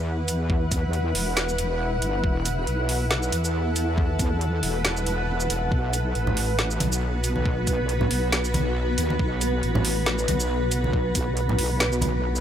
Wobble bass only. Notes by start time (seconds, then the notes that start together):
Already playing: E2
0.72 E2
1.15 E1
2.02 G1
2.24 E1
2.67 B1
3.33 E2
4.19 E2
4.63 E1
5.50 E1
5.72 B1
6.15 A1
6.80 B1
7.67 B1
8.11 B1
8.98 D#2
9.20 B1
9.63 A1
10.28 B1
11.15 B1
11.59 B1